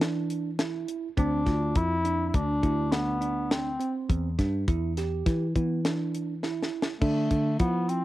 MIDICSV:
0, 0, Header, 1, 5, 480
1, 0, Start_track
1, 0, Tempo, 584226
1, 964, Time_signature, 5, 2, 24, 8
1, 6611, End_track
2, 0, Start_track
2, 0, Title_t, "Tine electric piano"
2, 0, Program_c, 0, 4
2, 12, Note_on_c, 0, 62, 82
2, 407, Note_off_c, 0, 62, 0
2, 485, Note_on_c, 0, 64, 73
2, 883, Note_off_c, 0, 64, 0
2, 963, Note_on_c, 0, 60, 90
2, 1162, Note_off_c, 0, 60, 0
2, 1200, Note_on_c, 0, 65, 73
2, 1599, Note_off_c, 0, 65, 0
2, 1683, Note_on_c, 0, 62, 73
2, 2081, Note_off_c, 0, 62, 0
2, 2160, Note_on_c, 0, 64, 72
2, 2360, Note_off_c, 0, 64, 0
2, 2400, Note_on_c, 0, 62, 82
2, 2600, Note_off_c, 0, 62, 0
2, 2639, Note_on_c, 0, 62, 73
2, 3038, Note_off_c, 0, 62, 0
2, 3120, Note_on_c, 0, 60, 71
2, 3519, Note_off_c, 0, 60, 0
2, 3605, Note_on_c, 0, 62, 70
2, 3802, Note_off_c, 0, 62, 0
2, 3847, Note_on_c, 0, 64, 72
2, 4044, Note_off_c, 0, 64, 0
2, 4089, Note_on_c, 0, 67, 68
2, 4484, Note_off_c, 0, 67, 0
2, 4565, Note_on_c, 0, 59, 69
2, 4763, Note_off_c, 0, 59, 0
2, 4808, Note_on_c, 0, 62, 74
2, 5204, Note_off_c, 0, 62, 0
2, 5286, Note_on_c, 0, 64, 73
2, 5683, Note_off_c, 0, 64, 0
2, 5762, Note_on_c, 0, 62, 80
2, 6161, Note_off_c, 0, 62, 0
2, 6240, Note_on_c, 0, 64, 67
2, 6611, Note_off_c, 0, 64, 0
2, 6611, End_track
3, 0, Start_track
3, 0, Title_t, "Bass clarinet"
3, 0, Program_c, 1, 71
3, 970, Note_on_c, 1, 62, 94
3, 1451, Note_on_c, 1, 64, 103
3, 1464, Note_off_c, 1, 62, 0
3, 1866, Note_off_c, 1, 64, 0
3, 1866, Note_on_c, 1, 64, 65
3, 1928, Note_on_c, 1, 62, 100
3, 1941, Note_off_c, 1, 64, 0
3, 2401, Note_on_c, 1, 59, 89
3, 2413, Note_off_c, 1, 62, 0
3, 2884, Note_on_c, 1, 60, 76
3, 2897, Note_off_c, 1, 59, 0
3, 3242, Note_off_c, 1, 60, 0
3, 5753, Note_on_c, 1, 57, 80
3, 6205, Note_off_c, 1, 57, 0
3, 6236, Note_on_c, 1, 59, 92
3, 6483, Note_on_c, 1, 60, 84
3, 6495, Note_off_c, 1, 59, 0
3, 6611, Note_off_c, 1, 60, 0
3, 6611, End_track
4, 0, Start_track
4, 0, Title_t, "Picked electric bass"
4, 0, Program_c, 2, 34
4, 0, Note_on_c, 2, 52, 94
4, 691, Note_off_c, 2, 52, 0
4, 967, Note_on_c, 2, 38, 101
4, 1184, Note_off_c, 2, 38, 0
4, 1205, Note_on_c, 2, 38, 78
4, 1422, Note_off_c, 2, 38, 0
4, 1444, Note_on_c, 2, 41, 83
4, 1890, Note_off_c, 2, 41, 0
4, 1925, Note_on_c, 2, 38, 84
4, 2142, Note_off_c, 2, 38, 0
4, 2162, Note_on_c, 2, 38, 86
4, 3088, Note_off_c, 2, 38, 0
4, 3364, Note_on_c, 2, 40, 88
4, 3581, Note_off_c, 2, 40, 0
4, 3605, Note_on_c, 2, 43, 81
4, 3821, Note_off_c, 2, 43, 0
4, 3845, Note_on_c, 2, 40, 84
4, 4290, Note_off_c, 2, 40, 0
4, 4323, Note_on_c, 2, 52, 91
4, 4541, Note_off_c, 2, 52, 0
4, 4566, Note_on_c, 2, 52, 88
4, 5491, Note_off_c, 2, 52, 0
4, 5764, Note_on_c, 2, 50, 84
4, 5982, Note_off_c, 2, 50, 0
4, 6005, Note_on_c, 2, 50, 70
4, 6223, Note_off_c, 2, 50, 0
4, 6242, Note_on_c, 2, 53, 75
4, 6611, Note_off_c, 2, 53, 0
4, 6611, End_track
5, 0, Start_track
5, 0, Title_t, "Drums"
5, 11, Note_on_c, 9, 38, 95
5, 11, Note_on_c, 9, 42, 74
5, 93, Note_off_c, 9, 38, 0
5, 93, Note_off_c, 9, 42, 0
5, 247, Note_on_c, 9, 42, 56
5, 329, Note_off_c, 9, 42, 0
5, 484, Note_on_c, 9, 38, 99
5, 484, Note_on_c, 9, 42, 75
5, 566, Note_off_c, 9, 38, 0
5, 566, Note_off_c, 9, 42, 0
5, 726, Note_on_c, 9, 42, 63
5, 808, Note_off_c, 9, 42, 0
5, 966, Note_on_c, 9, 36, 92
5, 967, Note_on_c, 9, 42, 74
5, 1048, Note_off_c, 9, 36, 0
5, 1049, Note_off_c, 9, 42, 0
5, 1204, Note_on_c, 9, 36, 65
5, 1206, Note_on_c, 9, 38, 34
5, 1206, Note_on_c, 9, 42, 61
5, 1287, Note_off_c, 9, 36, 0
5, 1288, Note_off_c, 9, 38, 0
5, 1288, Note_off_c, 9, 42, 0
5, 1442, Note_on_c, 9, 42, 79
5, 1444, Note_on_c, 9, 36, 90
5, 1524, Note_off_c, 9, 42, 0
5, 1526, Note_off_c, 9, 36, 0
5, 1685, Note_on_c, 9, 42, 65
5, 1767, Note_off_c, 9, 42, 0
5, 1924, Note_on_c, 9, 36, 100
5, 1924, Note_on_c, 9, 42, 88
5, 2006, Note_off_c, 9, 36, 0
5, 2006, Note_off_c, 9, 42, 0
5, 2163, Note_on_c, 9, 36, 68
5, 2164, Note_on_c, 9, 42, 56
5, 2246, Note_off_c, 9, 36, 0
5, 2247, Note_off_c, 9, 42, 0
5, 2402, Note_on_c, 9, 38, 103
5, 2402, Note_on_c, 9, 42, 78
5, 2484, Note_off_c, 9, 38, 0
5, 2484, Note_off_c, 9, 42, 0
5, 2644, Note_on_c, 9, 42, 56
5, 2726, Note_off_c, 9, 42, 0
5, 2886, Note_on_c, 9, 38, 107
5, 2886, Note_on_c, 9, 42, 77
5, 2968, Note_off_c, 9, 38, 0
5, 2968, Note_off_c, 9, 42, 0
5, 3126, Note_on_c, 9, 42, 57
5, 3209, Note_off_c, 9, 42, 0
5, 3365, Note_on_c, 9, 36, 90
5, 3367, Note_on_c, 9, 42, 67
5, 3447, Note_off_c, 9, 36, 0
5, 3449, Note_off_c, 9, 42, 0
5, 3605, Note_on_c, 9, 36, 65
5, 3606, Note_on_c, 9, 38, 33
5, 3606, Note_on_c, 9, 42, 57
5, 3687, Note_off_c, 9, 36, 0
5, 3689, Note_off_c, 9, 38, 0
5, 3689, Note_off_c, 9, 42, 0
5, 3844, Note_on_c, 9, 36, 92
5, 3845, Note_on_c, 9, 42, 68
5, 3927, Note_off_c, 9, 36, 0
5, 3927, Note_off_c, 9, 42, 0
5, 4085, Note_on_c, 9, 38, 34
5, 4085, Note_on_c, 9, 42, 55
5, 4168, Note_off_c, 9, 38, 0
5, 4168, Note_off_c, 9, 42, 0
5, 4324, Note_on_c, 9, 36, 109
5, 4325, Note_on_c, 9, 38, 34
5, 4325, Note_on_c, 9, 42, 78
5, 4407, Note_off_c, 9, 36, 0
5, 4408, Note_off_c, 9, 38, 0
5, 4408, Note_off_c, 9, 42, 0
5, 4564, Note_on_c, 9, 36, 70
5, 4566, Note_on_c, 9, 42, 59
5, 4647, Note_off_c, 9, 36, 0
5, 4648, Note_off_c, 9, 42, 0
5, 4806, Note_on_c, 9, 38, 102
5, 4806, Note_on_c, 9, 42, 77
5, 4888, Note_off_c, 9, 38, 0
5, 4888, Note_off_c, 9, 42, 0
5, 5049, Note_on_c, 9, 42, 62
5, 5131, Note_off_c, 9, 42, 0
5, 5284, Note_on_c, 9, 38, 59
5, 5366, Note_off_c, 9, 38, 0
5, 5443, Note_on_c, 9, 38, 62
5, 5525, Note_off_c, 9, 38, 0
5, 5606, Note_on_c, 9, 38, 95
5, 5688, Note_off_c, 9, 38, 0
5, 5763, Note_on_c, 9, 49, 75
5, 5764, Note_on_c, 9, 36, 85
5, 5845, Note_off_c, 9, 49, 0
5, 5846, Note_off_c, 9, 36, 0
5, 6003, Note_on_c, 9, 42, 54
5, 6004, Note_on_c, 9, 36, 58
5, 6085, Note_off_c, 9, 42, 0
5, 6086, Note_off_c, 9, 36, 0
5, 6240, Note_on_c, 9, 42, 67
5, 6243, Note_on_c, 9, 36, 88
5, 6322, Note_off_c, 9, 42, 0
5, 6325, Note_off_c, 9, 36, 0
5, 6483, Note_on_c, 9, 42, 52
5, 6565, Note_off_c, 9, 42, 0
5, 6611, End_track
0, 0, End_of_file